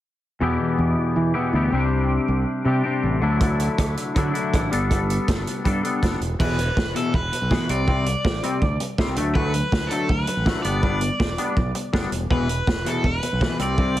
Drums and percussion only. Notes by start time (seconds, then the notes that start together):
3.41 kick, closed hi-hat
3.60 closed hi-hat
3.78 kick, cross-stick, closed hi-hat
3.97 closed hi-hat
4.16 kick, closed hi-hat
4.35 closed hi-hat
4.54 kick, cross-stick, closed hi-hat
4.72 closed hi-hat
4.91 kick, closed hi-hat
5.10 closed hi-hat
5.28 kick, snare, closed hi-hat
5.47 closed hi-hat
5.65 kick, closed hi-hat
5.85 closed hi-hat
6.03 kick, snare, closed hi-hat
6.21 closed hi-hat
6.40 kick, crash
6.59 closed hi-hat
6.77 kick, snare
6.96 closed hi-hat
7.14 kick
7.33 closed hi-hat
7.51 kick, snare
7.69 closed hi-hat
7.88 kick
8.06 closed hi-hat
8.25 kick, snare
8.43 closed hi-hat
8.62 kick
8.80 closed hi-hat
8.98 kick, snare
9.16 closed hi-hat
9.35 kick
9.54 closed hi-hat
9.72 kick, snare
9.91 closed hi-hat
10.09 kick
10.27 closed hi-hat
10.46 kick, snare
10.64 closed hi-hat
10.83 kick
11.01 closed hi-hat
11.20 kick, snare
11.38 closed hi-hat
11.57 kick
11.75 closed hi-hat
11.94 kick, snare
12.12 closed hi-hat
12.31 kick
12.49 closed hi-hat
12.67 kick, snare
12.86 closed hi-hat
13.04 kick
13.23 closed hi-hat
13.41 kick, snare
13.59 closed hi-hat
13.78 kick
13.97 closed hi-hat